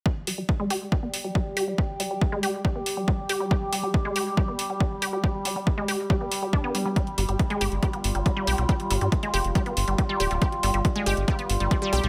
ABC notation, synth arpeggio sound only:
X:1
M:4/4
L:1/16
Q:1/4=139
K:none
V:1 name="Synth arpeggio sound" clef=bass
G, z G, G, z _A, G z G, B, z G, G, z G G, | G, z G, G, z _A, G z G, B, z G, G, z G G, | G, z G, G, z _A, G z G, B, z G, G, z G G, | G, z G, G, z _A, G z G, B, z G, D B, G, G, |
G, z G, G, z _A, G z G, B, z G, G, G, G G, | G, z G, G, z _A, G z G, B, z G, G, G, G G, | G, z G, G, z _A, G z G, B, z G, G, G, G G, |]